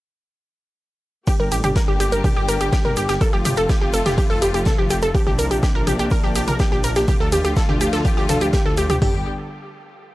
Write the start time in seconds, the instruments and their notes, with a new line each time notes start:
1.27 string section D3 G3 A#3 G4, synth arpeggio sound G4, kick, closed hi-hat, shaker
1.40 detuned saw bass G1, synth arpeggio sound A#4
1.51 detuned saw bass A1, synth arpeggio sound G4, closed hi-hat, open hi-hat, shaker
1.63 detuned saw bass G1, synth arpeggio sound G4, closed hi-hat, mid tom, shaker
1.76 synth arpeggio sound A#4, kick, snare, closed hi-hat, shaker
1.88 detuned saw bass G1, synth arpeggio sound G4
2.00 detuned saw bass G1, synth arpeggio sound G4, closed hi-hat, open hi-hat, shaker
2.12 detuned saw bass G1, synth arpeggio sound A#4, closed hi-hat, shaker
2.24 synth arpeggio sound G4, kick, closed hi-hat, mid tom, shaker
2.36 detuned saw bass G1, synth arpeggio sound G4
2.48 detuned saw bass G1, synth arpeggio sound A#4, closed hi-hat, open hi-hat, shaker
2.60 detuned saw bass G1, synth arpeggio sound G4, closed hi-hat, shaker
2.72 synth arpeggio sound G4, kick, snare, closed hi-hat, shaker
2.85 detuned saw bass G1, synth arpeggio sound A#4, closed hi-hat, mid tom
2.96 detuned saw bass G1, synth arpeggio sound G4, closed hi-hat, open hi-hat, shaker
3.09 detuned saw bass G1, synth arpeggio sound G4, snare, closed hi-hat, shaker
3.21 string section C3 F3 A3 F4, synth arpeggio sound A4, kick, closed hi-hat, shaker
3.33 detuned saw bass F1, synth arpeggio sound G4
3.45 detuned saw bass G1, synth arpeggio sound G4, closed hi-hat, mid tom, open hi-hat, shaker
3.56 detuned saw bass F1, synth arpeggio sound A4, closed hi-hat, shaker
3.69 synth arpeggio sound G4, kick, snare, closed hi-hat, shaker
3.81 detuned saw bass F1, synth arpeggio sound G4
3.93 detuned saw bass F1, synth arpeggio sound A4, closed hi-hat, open hi-hat, shaker
4.06 detuned saw bass F1, synth arpeggio sound G4, snare, closed hi-hat, mid tom, shaker
4.18 synth arpeggio sound G4, kick, closed hi-hat, shaker
4.30 detuned saw bass F1, synth arpeggio sound A4, closed hi-hat
4.42 detuned saw bass F1, synth arpeggio sound G4, closed hi-hat, open hi-hat, shaker
4.54 detuned saw bass F1, synth arpeggio sound G4, closed hi-hat, shaker
4.65 synth arpeggio sound A4, kick, snare, closed hi-hat, mid tom, shaker
4.78 detuned saw bass F1, synth arpeggio sound G4
4.90 detuned saw bass F1, synth arpeggio sound G4, closed hi-hat, open hi-hat, shaker
5.02 detuned saw bass F1, synth arpeggio sound A4, closed hi-hat, shaker
5.15 string section A#3 D4, synth arpeggio sound G4, kick, closed hi-hat, shaker
5.27 detuned saw bass A#1, synth arpeggio sound G4, mid tom
5.39 detuned saw bass C2, synth arpeggio sound A#4, closed hi-hat, open hi-hat, shaker
5.51 detuned saw bass A#1, synth arpeggio sound G4, closed hi-hat, shaker
5.63 synth arpeggio sound G4, kick, snare, closed hi-hat, shaker
5.75 detuned saw bass A#1, synth arpeggio sound A#4
5.87 detuned saw bass A#1, synth arpeggio sound G4, closed hi-hat, mid tom, open hi-hat, shaker
5.99 detuned saw bass A#1, synth arpeggio sound G4, closed hi-hat, shaker
6.10 synth arpeggio sound A#4, kick, closed hi-hat, shaker
6.24 detuned saw bass A#1, synth arpeggio sound G4
6.35 detuned saw bass A#1, synth arpeggio sound G4, closed hi-hat, open hi-hat, shaker
6.48 detuned saw bass A#1, synth arpeggio sound A#4, closed hi-hat, mid tom, shaker
6.59 synth arpeggio sound G4, kick, snare, closed hi-hat, shaker
6.72 detuned saw bass A#1, synth arpeggio sound G4, closed hi-hat
6.83 detuned saw bass A#1, synth arpeggio sound A#4, closed hi-hat, open hi-hat, shaker
6.96 detuned saw bass A#1, synth arpeggio sound G4, snare, closed hi-hat, shaker
7.08 string section D3 F3 A3 F4, synth arpeggio sound G4, kick, closed hi-hat, mid tom, shaker
7.20 detuned saw bass D2, synth arpeggio sound A4
7.32 detuned saw bass D#2, synth arpeggio sound G4, closed hi-hat, open hi-hat, shaker
7.44 detuned saw bass D2, synth arpeggio sound G4, closed hi-hat, shaker
7.56 synth arpeggio sound A4, kick, snare, closed hi-hat, shaker
7.69 detuned saw bass D2, synth arpeggio sound G4, mid tom
7.81 detuned saw bass D2, synth arpeggio sound G4, closed hi-hat, open hi-hat, shaker
7.93 detuned saw bass D2, synth arpeggio sound A4, snare, closed hi-hat, shaker
8.05 synth arpeggio sound G4, kick, closed hi-hat, shaker
8.17 detuned saw bass D2, synth arpeggio sound G4, closed hi-hat
8.29 detuned saw bass D2, synth arpeggio sound A4, closed hi-hat, mid tom, open hi-hat, shaker
8.41 detuned saw bass D2, synth arpeggio sound G4, closed hi-hat, shaker
8.53 synth arpeggio sound G4, kick, snare, closed hi-hat, shaker
8.65 detuned saw bass D2, synth arpeggio sound A4
8.77 detuned saw bass D2, synth arpeggio sound G4, closed hi-hat, open hi-hat, shaker
8.90 detuned saw bass D2, synth arpeggio sound G4, closed hi-hat, mid tom, shaker
9.02 detuned saw bass G1, string section D3 G3 B3 G4, synth arpeggio sound G4, kick, floor tom, open hi-hat